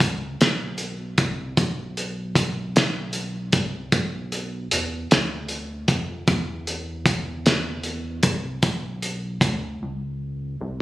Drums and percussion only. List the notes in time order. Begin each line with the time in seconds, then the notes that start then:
0.00 kick, closed hi-hat
0.41 snare, closed hi-hat
0.78 closed hi-hat
1.18 kick, closed hi-hat
1.57 kick, closed hi-hat
1.97 closed hi-hat
2.35 kick, closed hi-hat
2.76 snare, closed hi-hat
3.13 closed hi-hat
3.52 kick, closed hi-hat
3.92 kick, closed hi-hat
4.32 closed hi-hat
4.71 closed hi-hat
5.11 snare, closed hi-hat
5.48 closed hi-hat
5.88 kick, closed hi-hat
6.28 kick, closed hi-hat
6.67 closed hi-hat
7.06 kick, closed hi-hat
7.46 snare, closed hi-hat
7.83 closed hi-hat
8.23 kick, closed hi-hat
8.63 kick, closed hi-hat
9.02 closed hi-hat
9.41 kick, closed hi-hat